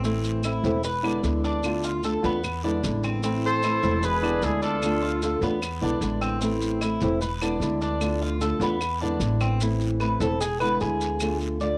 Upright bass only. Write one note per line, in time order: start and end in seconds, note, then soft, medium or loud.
0.00 0.58 A1 medium
0.64 1.20 E1 medium
1.23 2.17 D2 medium
2.24 2.79 E2 loud
2.83 3.77 A1 medium
3.83 4.39 E1 loud
4.43 5.36 D2 medium
5.41 5.79 E2 medium
5.82 6.01 B1 medium
6.01 6.95 A1 medium
7.02 7.58 E1 medium
7.60 8.55 D2 medium
8.60 9.17 E2 medium
9.20 10.14 A1 medium
10.20 10.76 E1 medium
10.81 11.75 D2 medium